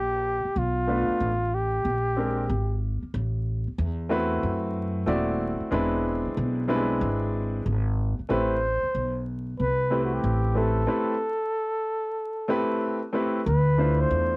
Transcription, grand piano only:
0.87 1.28 A3 medium
0.87 1.28 B3 medium
0.87 1.29 D4 medium
0.87 1.29 F4 medium
0.87 1.29 B4 medium
2.16 2.42 G#3 medium
2.16 2.42 C4 medium
2.16 2.43 D4 medium
2.16 2.43 G4 medium
2.16 2.43 A#4 medium
4.09 5.02 A3 medium
4.09 5.03 C4 medium
4.09 5.03 E4 medium
4.09 5.03 F#4 medium
4.09 5.03 B4 medium
5.06 5.71 A3 medium
5.06 5.70 C4 medium
5.06 5.71 E4 medium
5.06 5.72 F#4 medium
5.06 5.72 D5 medium
5.71 6.64 G#3 medium
5.71 6.64 C4 medium
5.71 6.64 D4 medium
5.71 6.64 E4 medium
5.71 6.65 B4 medium
6.68 6.77 G3 medium
6.68 7.61 C4 medium
6.68 7.61 D4 medium
6.68 7.61 E4 medium
6.68 7.62 B4 medium
6.74 7.64 G#3 medium
8.29 8.55 A3 medium
8.29 8.55 C4 medium
8.29 8.55 E4 medium
8.29 8.56 G4 medium
8.29 8.56 B4 medium
9.90 10.53 A3 medium
9.90 10.54 C4 medium
9.90 10.54 E4 medium
9.90 10.55 G4 medium
9.90 10.55 B4 medium
10.55 10.81 A3 medium
10.55 10.81 C4 medium
10.55 10.81 E4 medium
10.55 10.82 G4 medium
10.55 10.82 B4 medium
10.87 11.13 A3 medium
10.87 11.13 C4 medium
10.87 11.13 E4 medium
10.87 11.14 G4 medium
10.87 11.14 B4 medium
12.48 12.98 A3 medium
12.48 12.98 C4 medium
12.48 12.98 E4 medium
12.48 12.99 G4 medium
12.48 12.99 B4 medium
13.13 13.39 A3 medium
13.13 13.39 C4 medium
13.13 13.39 E4 medium
13.13 13.40 G4 medium
13.13 13.40 B4 medium
13.78 14.37 A3 medium
13.78 14.37 D4 medium
13.78 14.37 E4 medium
13.78 14.37 F4 medium
13.78 14.37 C5 medium

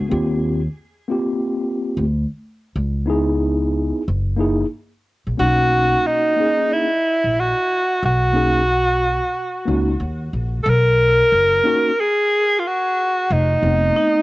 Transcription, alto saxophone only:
5.40 6.08 F#4 loud
6.06 6.74 D#4 medium
6.73 7.41 E4 loud
7.40 8.04 F#4 medium
8.05 9.98 F#4 loud
10.63 10.71 A4 medium
10.70 12.02 A#4 loud
12.00 12.61 G#4 loud
12.59 12.69 F4 medium
12.67 13.34 F#4 medium
13.32 14.22 D#4 medium

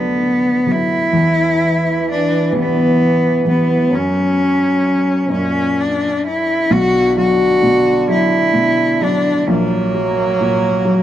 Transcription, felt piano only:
0.00 1.10 D2 medium
0.00 0.64 D3 soft
0.00 0.65 F#3 soft
0.00 0.64 B3 soft
0.66 1.12 D3 soft
0.66 1.12 F#3 soft
0.66 1.12 B3 soft
1.13 3.86 E2 medium
2.53 3.42 E3 soft
2.53 3.42 G3 soft
2.53 3.42 B3 medium
3.45 3.90 E3 soft
3.45 3.90 G3 soft
3.45 3.90 B3 soft
3.91 5.26 F#2 medium
5.30 6.65 F#2 medium
6.70 9.43 B1 medium
6.70 7.61 B2 medium
7.17 8.07 F#3 medium
7.63 8.52 B2 soft
8.08 9.00 F#3 medium
8.54 9.44 B2 medium
9.01 9.46 F#3 medium
9.48 11.03 A#1 medium
9.48 10.39 A#2 medium
9.95 10.84 F#3 medium
10.41 11.03 A#2 medium
10.85 11.03 F#3 medium

